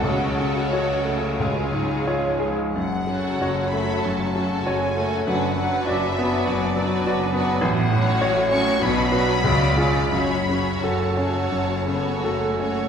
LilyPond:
<<
  \new Staff \with { instrumentName = "Violin section" } { \time 4/4 \key fis \minor \tempo 4 = 93 cis''2. r4 | fis''4. b''8 a''4 gis''4 | fis''4 e''4 d''4. r8 | fis''4. cis'''8 b''2 |
b''4 a''2~ a''8 r8 | }
  \new Staff \with { instrumentName = "Violin section" } { \time 4/4 \key fis \minor <fis' a'>2 <eis' gis'>4. r8 | r8 <fis' a'>4 <fis' a'>4 <fis' a'>4 <fis' a'>8 | <fis' b'>8 <fis' b'>4 <fis' b'>4 <fis' b'>4 <fis' b'>8 | r8 <fis' cis''>4 <fis' cis''>8 <fis' b'>8 <fis' b'>8 <eis' d''>8 <eis' d''>8 |
<fis' cis''>8 <fis' cis''>4 <fis' cis''>4 <fis' cis''>4 <fis' cis''>8 | }
  \new Staff \with { instrumentName = "Grand piano" } { \time 4/4 \key fis \minor cis,8 cis8 <fis' cis''>8 a8 cis,8 gis,8 <eis' cis''>8 gis8 | fis,8 cis8 <fis' cis''>8 a8 fis,8 cis8 <fis' cis''>8 a8 | fis,8 fis8 <fis' d''>8 b8 fis,8 fis8 <fis' d''>8 b8 | a,,8 a,8 <fis' cis''>8 cis'8 b,,8 <fis' b'>8 cis,8 <eis' gis'>8 |
fis,8 cis8 <fis' a'>8 cis'8 fis,8 cis8 <fis' a'>8 cis'8 | }
  \new Staff \with { instrumentName = "Viola section" } { \time 4/4 \key fis \minor <fis cis'>2 <gis cis'>4. r8 | r8 <fis cis'>4 <fis cis'>4 <fis cis'>4 <fis cis'>8 | <fis d'>8 <fis d'>4 <fis d'>4 <fis d'>4 <fis d'>8 | r8 <fis cis'>4 <fis cis'>8 <fis d'>8 <fis d'>8 <gis cis'>8 <gis cis'>8 |
<fis cis'>8 <fis cis'>8 fis4. b8 a4 | }
  \new Staff \with { instrumentName = "Cello section" } { \clef bass \time 4/4 \key fis \minor cis4 cis4. fis8 eis4 | fis,4 fis,4 fis,4 fis,4 | fis,4 fis,4 fis,4 fis,4 | a,4 a,4 b,4 cis4 |
fis,4 fis,4 fis,4 fis,4 | }
  \new Staff \with { instrumentName = "Double bass section" } { \clef bass \time 4/4 \key fis \minor cis,2.~ cis,8 r8 | fis,,4 fis,,4 fis,,4 fis,,4 | fis,,4 fis,,4 fis,,4 fis,,4 | a,,4 a,,4 b,,4 cis,4 |
fis,,4 fis,,4 fis,,4 fis,,4 | }
>>